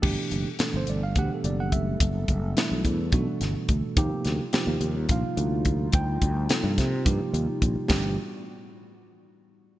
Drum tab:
CC |x------|-------|-------|-------|
HH |-xxxxxx|xxxxxxx|xxxxxxx|xxxxxxx|
SD |--o----|--o--o-|-oo----|--oo---|
BD |o---o-o|oo-oo-o|o---o-o|oo-oo-o|

CC |x------|
HH |-------|
SD |o------|
BD |o------|